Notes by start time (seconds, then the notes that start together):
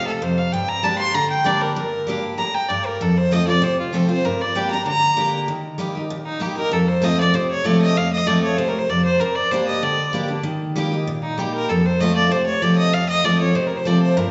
Already playing: C3
0.07 A4
0.22 F2 C5
0.38 F5
0.52 G2 G5
0.68 A#5
0.83 G3 A#3 D4 G4 A5
0.98 C6
1.14 D3 A#5
1.30 G5
1.44 G3 A#3 D4 G4 D5
1.61 A#4
1.76 G2 A#4
2.07 G3 A#3 D4 G4
2.38 A2 A#5
2.54 G5
2.69 G2 D5
2.86 A#4
3.01 F2 A4
3.18 C5
3.31 F3 A3 C4 F4 D#5
3.47 C4 F4 D5
3.62 C3 C5
3.80 F4
3.93 F3 A3 C4 F4 A4
4.09 C4 F4 C5
4.25 G2 A#4
4.41 D5
4.55 G3 A#3 D4 G4 G5
4.71 D4 G4 A#5
4.86 D3 A#5
5.17 G3 A#3 D4 G4
5.48 D#3
5.78 G3 A#3 D#4 G4
5.95 D#4 G4
6.10 A#2
6.26 D#4
6.40 G3 A#3 D#4 G4
6.56 D#4 G4 A#4
6.71 F2 A4
6.88 C5
7.02 F3 A3 C4 F4 D#5
7.17 C4 F4 D5
7.34 C3 C5
7.51 C#5
7.64 F3 A3 C4 F4 D5
7.82 D#5
7.96 F2 F5
8.13 D#5
8.26 F3 A3 C4 F4 D5
8.44 C#5
8.57 C3 C5
8.68 A#4
8.79 C5
8.89 F2 D5
9.05 C5
9.20 G2 A#4
9.35 D5
9.51 G3 A#3 D4 G4 C5
9.67 D#5
9.83 D3 D5
10.13 G3 A#3 D4 G4
10.28 D4 G4
10.43 D#3
10.76 G3 A#3 D#4 G4
10.92 D#4 G4
11.07 A#2
11.22 D#4
11.38 G3 A#3 D#4 G4
11.54 A#4
11.69 F2 A4
11.85 C5
12.00 F3 A3 C4 F4 D#5
12.16 D5
12.31 C3 C5
12.46 C#5
12.62 F3 A3 C4 F4 D5
12.78 D#5
12.93 F2 F5
13.09 D#5
13.24 F3 A3 C4 F4 D5
13.40 C4 F4 C#5
13.55 C3 C5
13.67 A#4
13.77 C5
13.85 F3 A3 C4 F4 D5
14.03 C5
14.17 G2 A#4